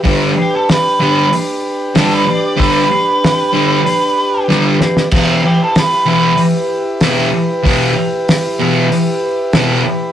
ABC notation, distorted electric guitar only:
X:1
M:4/4
L:1/8
Q:1/4=95
K:Em
V:1 name="Distorted electric guitar" clef=bass
[G,,D,G,] z2 [G,,D,G,] z2 [G,,D,G,] z | [G,,D,G,] z2 [G,,D,G,] z2 [G,,D,G,] z | [E,,B,,E,] z2 [E,,B,,E,] z2 [E,,B,,E,] z | [E,,B,,E,] z2 [E,,B,,E,] z2 [E,,B,,E,] z |]